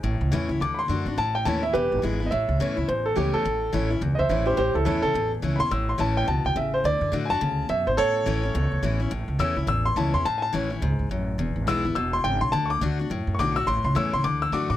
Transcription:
0.03 A1 A2
0.21 C#2
0.32 E2 E3 A3 C#4 E4
0.49 C#2 C#4 E4
0.60 D2 D3 D6
0.74 B5
0.79 C6
0.88 F#2 D3 A3 D4 F#4
1.06 G#1 D4 F#4
1.18 A1 A2 A5
1.35 G5
1.45 D#2 E3 A3 C#4 E4 A5
1.63 C#4 E4 E5
1.73 E1 E2 G4 B4
1.92 G#1
2.02 G#1 E3 G#3 B3 E4
2.20 B3 E4
2.26 D#5
2.31 A1 A2 E5
2.49 C#2
2.60 E2 E3 A3 C#4 E4
2.77 C#2 C#4 E4
2.88 A1 E2 C5
3.06 A4
3.16 C#2 E3 A3 C#4 E4 G4
3.34 E2 A4
3.45 A1 A2
3.73 A1 E3 A3 C#4 E4
3.90 C#4 E4
4.01 C#2 E2
4.15 C#2 C5 D#5
4.19 E5
4.29 A1 E3 A3 C#4 E4 C5 E5
4.46 C#4 E4 G4 C5
4.57 A1 A2 G4 C5
4.74 C#2 E4 A4
4.85 E2 E3 A3 C#4 E4 A4
5.02 C#2 C#4 E4 A4
5.14 A1 E2
5.42 C#2 E3 A3 C#4 E4
5.56 E2 E4 B5
5.60 C#4 C6
5.71 A1 A2 E6
5.89 C6
5.98 A1 E3 A3 C#4 E4 A5
6.17 G5
6.28 C#2 B2 A5
6.45 C#2 G5
6.55 A1 C#3 E5
6.74 C5
6.84 D2 D3 D5
7.01 F#2
7.12 A2 D3 A3 D4 F#4
7.25 F#4 G#5
7.30 F#2 D4 A5
7.41 D2 C#3
7.69 F#2 B2 E5
7.87 G#1 C5
7.97 A1 A2 A4 C#5
8.26 A1 E3 A3 C#4 E4
8.43 C#4 E4
8.55 C#2 E2
8.72 C#2
8.83 A1 E3 A3 C#4 E4
9.00 C#4 E4
9.11 A1 A2
9.28 C#2
9.39 E2 E3 A3 C#4 E4 E6
9.56 C#2 C#4 E4
9.67 A1 E2 E6
9.86 C6
9.96 C#2 E3 A3 C#4 E4 A5
10.14 E2 C#4 E4 C6
10.25 A1 A2 A5
10.38 G#5
10.42 A5
10.53 A1 E3 A3 C#4 E4
10.70 C#4 E4
10.82 C#2 G#2
10.99 C#2
11.09 A1 F#2
11.38 E1 E2
11.56 G#1
11.67 B1 E3 G#3 B3 E4 E6
11.85 G#1 B3 E4
11.95 E1 B2 E6
12.13 C6
12.24 G#1 C#3 G5
12.41 B1 C6
12.52 D2 D3 A5
12.66 C#6
12.70 D6
12.81 D2 D3 A3 D4 F#4
12.99 D4 F#4
13.10 F#2 A2
13.27 F#2
13.35 C#6
13.39 B1 D3 A3 D4 F#4 D6
13.56 D4 F#4 E6
13.67 A1 A2 C6
13.84 C#2 C6
13.95 E2 E3 A3 C#4 E4 E6
14.13 C#2 C#4 E4 C6
14.24 D2 D3 D6
14.42 E6
14.52 F#2 D3 A3 D4 F#4 D6
14.70 A2 D4 F#4 D6

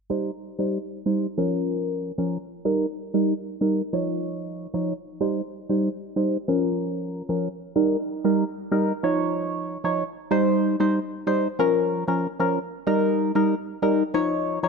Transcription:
0.10 G3 D#4 C5
0.59 G3 D#4 C5
1.06 G3 D#4 C5
1.38 F3 C#4 A#4
2.18 F3 C#4 A#4
2.65 G3 D#4 A#4
3.14 G3 D#4 A#4
3.61 G3 D#4 A#4
3.93 F3 D#4 C#5
4.74 F3 D#4 C#5
5.21 G3 D#4 C5
5.69 G3 D#4 C5
6.16 G3 D#4 C5
6.48 F3 C#4 A#4
7.29 F3 C#4 A#4
7.76 G3 D#4 A#4
8.24 G3 D#4 A#4
8.72 G3 D#4 A#4
9.03 F3 D#4 C#5
9.84 F3 D#4 C#5
10.31 G3 D#4 C5
10.80 G3 D#4 C5
11.27 G3 D#4 C5
11.59 F3 C#4 A#4
12.08 F3 C#4 A#4
12.40 F3 C#4 A#4
12.87 G3 D#4 A#4
13.35 G3 D#4 A#4
13.82 G3 D#4 A#4
14.14 F3 D#4 C#5
14.63 F3 D#4 C#5

